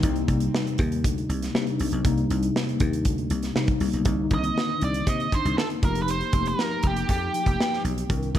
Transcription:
0.02 C2 C3 G3 A#3 D#4, kick, closed hi-hat
0.16 closed hi-hat
0.28 C2, kick, closed hi-hat
0.40 closed hi-hat
0.55 snare
0.67 closed hi-hat
0.78 D#2, kick, closed hi-hat
0.92 closed hi-hat
1.04 D2, kick, closed hi-hat
1.18 closed hi-hat
1.29 C2, closed hi-hat
1.42 snare, closed hi-hat
1.54 C3 G3 A#3 D4, snare
1.61 D#4
1.67 closed hi-hat
1.80 C2, open hi-hat
1.92 B1, closed hi-hat
2.04 C2 C3 G3 A#3 D#4, kick, closed hi-hat
2.18 closed hi-hat
2.30 C2, closed hi-hat
2.43 closed hi-hat
2.56 snare
2.69 closed hi-hat
2.80 D#2, kick, closed hi-hat
2.93 closed hi-hat
3.05 D2, kick, closed hi-hat
3.18 closed hi-hat
3.30 C2, closed hi-hat
3.43 snare, closed hi-hat
3.55 C3 G3 A#3 D#4, snare
3.68 kick, closed hi-hat
3.80 C2, open hi-hat
3.93 B1, closed hi-hat
4.05 C2 D3 A#3 C4 D#4, kick, closed hi-hat
4.30 C2 D#3 A#3 C4 D4, kick, closed hi-hat
4.34 D#4 D#5
4.44 closed hi-hat
4.58 snare
4.81 C2 D5, closed hi-hat
4.94 closed hi-hat
5.07 C3 D#5, kick, closed hi-hat
5.20 closed hi-hat
5.32 A#3 C4 D4 D#4 C5, kick, closed hi-hat
5.45 C2, closed hi-hat
5.58 A4, snare
5.70 closed hi-hat
5.82 F1 F3 A#3 D#4 F4 A#4, kick, closed hi-hat
5.89 G4
5.95 closed hi-hat
6.02 B4
6.08 C5, closed hi-hat
6.21 closed hi-hat
6.32 F1 F3 A3 D#4 G4, kick, closed hi-hat
6.39 A#3
6.46 A#4, closed hi-hat
6.59 snare
6.83 F1, kick, closed hi-hat
6.87 G4
6.96 closed hi-hat
7.09 F2 G4, kick, closed hi-hat
7.33 F3 A#3 D#4 G4, closed hi-hat
7.46 F1, kick, closed hi-hat
7.60 snare
7.73 snare
7.84 B1, closed hi-hat
7.98 closed hi-hat
8.09 C2 D#3 C4 D4 A#4, kick, closed hi-hat
8.23 closed hi-hat
8.34 C2 D3 D#3 C4 A#4, kick, closed hi-hat

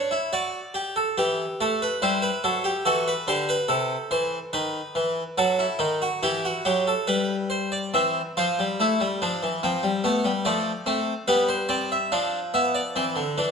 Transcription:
Already playing: D4 C#5
0.11 E4
0.33 F#4 D5
0.74 G4
0.96 A4
1.18 E3 G4
1.61 A3 A4
1.82 B4
2.02 G3 E4 C5
2.22 B4
2.44 F#3 A4
2.64 G4
2.85 E3 F#4 A4
3.08 B4
3.28 D3 G4 C5
3.49 B4
3.68 C3 A4
4.11 E3 C5
4.53 D#3 B4
4.95 E3
5.38 F#3 F#4 A4
5.59 E4
5.79 D#3 D#4
6.02 F#4
6.23 E3 E4 G4
6.45 F#4
6.65 F#3 G4
6.87 A4
7.07 G3 B4
7.50 C5
7.72 D5
7.94 E3 C4 E5
8.37 F3 F4 C5
8.59 G3
8.80 A3 E4
9.00 G3
9.22 F3 D4
9.43 E3
9.63 F3 C4
9.83 G3
10.04 A3 B3
10.25 G3
10.45 F3 A3 D5
10.86 A3 C4
11.28 G3 B3 B4
11.48 C5
11.69 C4 D5
11.92 E5
12.12 F3 D4 F5
12.54 B3 E5
12.75 D5
12.96 E3 C4
13.16 D3
13.38 E3 D4

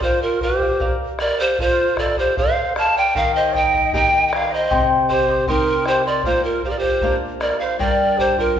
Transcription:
0.01 F4 A#4 C5 D5 F5, bombo low
0.22 F4 A#4
0.40 G4 A#4 C5 D5 F5, bombo low
0.60 D5 F5, bombo low
0.80 A#4 D5 F5, bombo low
1.19 A#4 D5 F5, bombo rim
1.39 G4 C5 D5 F5
1.59 F4 A4 C5 F5, bombo low
1.97 A4 C5 D5 F5, bombo rim, bombo low
2.17 G4 C5 F5, bombo low
2.37 A4 C5 F5, bombo low
2.76 A4 C5 F5 A5, bombo rim
2.97 C5 D5 F5 G5
3.15 D#3 G4 A#4 D#5 F5 G5 A#5, bombo low
3.35 C5 D#5
3.54 A#4 D#5 G5 A#5, bombo low
3.73 A#4 D#5 A#5, bombo low
3.93 A#3 D#4 G4 A#4 D#5 G5 A#5, bombo low
4.26 D#5 G5
4.32 A#4 D5 D#5 F5 G5 A#5, bombo rim
4.50 A#4 C5 D#5 A#5
4.70 C3 G4 C5 D#5 G5 C6, bombo low
5.08 G4 C5 D#5 G5 C6, bombo low
5.28 C5 D#5 C6, bombo low
5.47 C4 D#4 G4 A#4 C5 D#5 G5 C6, bombo low
5.86 G4 C5 D#5 G5 C6, bombo rim
6.06 A#4 C5 D5 D#5 C6
6.23 A#2 F4 A#4 C5 D5 F5, bombo low
6.44 F4 A#4
6.63 G4 A#4 C5 D5 F5, bombo low
6.70 A#4 D5
6.77 G4 C5
6.83 D5 F5, bombo low
7.01 A#3 D4 F4 A#4 D5 F5, bombo low
7.41 A#4 D5 F5, bombo rim
7.60 C5 D5 F5
7.79 G2 G4 A#4 D5 G5 A#5, bombo low
8.17 G4 A#4 C5 D5 G5 A#5, bombo low
8.37 F4 A#4 D5 A#5, bombo low
8.56 bombo low

